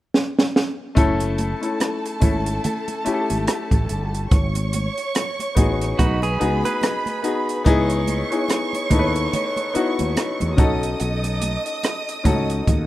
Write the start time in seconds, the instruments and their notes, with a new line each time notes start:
0.14 snare
0.39 snare
0.56 snare
0.95 fretless electric bass F#1, grand piano A3 C#4 E4 A4, violin section A4 A5, kick, closed hi-hat, muted conga
1.20 closed hi-hat, muted conga
1.38 closed hi-hat, high conga
1.61 grand piano A3 C#4 E4 A4, closed hi-hat
1.80 cross-stick, closed hi-hat, muted conga
2.05 closed hi-hat
2.20 fretless electric bass G#1, grand piano A3 C#4 E4 A4, kick, closed hi-hat, high conga, low conga
2.46 closed hi-hat
2.64 closed hi-hat, muted conga, high conga, low conga
2.88 closed hi-hat, muted conga
3.05 grand piano A3 C#4 E4 G4, muted fretless electric bass stroke, closed hi-hat
3.14 grand piano A4
3.30 fretless electric bass G#1, closed hi-hat, high conga
3.47 cross-stick, closed hi-hat, muted conga
3.71 fretless electric bass A1, kick, closed hi-hat, muted conga, high conga
3.89 fretless electric bass G1, closed hi-hat
4.14 closed hi-hat
4.31 fretless electric bass G#1, violin section C#5 C#6, kick, closed hi-hat
4.55 closed hi-hat, muted conga
4.73 closed hi-hat, high conga
4.98 closed hi-hat
5.15 cross-stick, closed hi-hat
5.40 closed hi-hat, muted conga
5.55 fretless electric bass A1, grand piano B3 D#4 F#4 G#4, kick, closed hi-hat, high conga, low conga
5.81 cross-stick, closed hi-hat
5.99 fretless electric bass B1, clean electric guitar D#4 F#4, violin section B4 B5, kick, closed hi-hat, muted conga, high conga, low conga
6.22 clean electric guitar G#4, closed hi-hat, muted conga
6.39 fretless electric bass C#2, grand piano B3 D#4 F#4 G#4, closed hi-hat
6.64 clean electric guitar G#4 B4, closed hi-hat, high conga
6.82 cross-stick, closed hi-hat, muted conga
7.06 closed hi-hat, high conga
7.22 grand piano B3 D#4 F#4 G#4, closed hi-hat
7.49 closed hi-hat
7.64 fretless electric bass C#2, grand piano B3 D#4 E4 G#4, violin section C#5 C#6, kick, closed hi-hat, muted conga
7.90 closed hi-hat
8.07 closed hi-hat, high conga
8.30 grand piano B3 D#4 E4 G#4, closed hi-hat
8.49 cross-stick, closed hi-hat, muted conga
8.73 closed hi-hat, muted conga
8.90 fretless electric bass D#2, grand piano B3 D#4 E4 A4, kick, closed hi-hat, high conga, low conga
8.99 grand piano B4
9.16 closed hi-hat
9.33 closed hi-hat, muted conga, high conga, low conga
9.57 closed hi-hat, muted conga
9.74 grand piano B3 D#4 E4 F#4, muted fretless electric bass stroke, closed hi-hat
9.99 fretless electric bass D#2, closed hi-hat, high conga
10.16 cross-stick, closed hi-hat, muted conga
10.40 fretless electric bass E2, closed hi-hat, muted conga, high conga
10.57 fretless electric bass B1, grand piano C#4 D#4 F#4 A4, violin section D#5 D#6, kick, cross-stick, closed hi-hat
10.83 closed hi-hat
11.00 fretless electric bass B1, closed hi-hat
11.24 closed hi-hat, muted conga
11.42 closed hi-hat, high conga
11.66 closed hi-hat
11.83 cross-stick, closed hi-hat, muted conga
12.09 closed hi-hat
12.24 fretless electric bass C#2, grand piano C#4 D#4 F#4 A4, kick, closed hi-hat, high conga, low conga
12.50 closed hi-hat
12.67 fretless electric bass D#2, kick, closed hi-hat, muted conga, high conga, low conga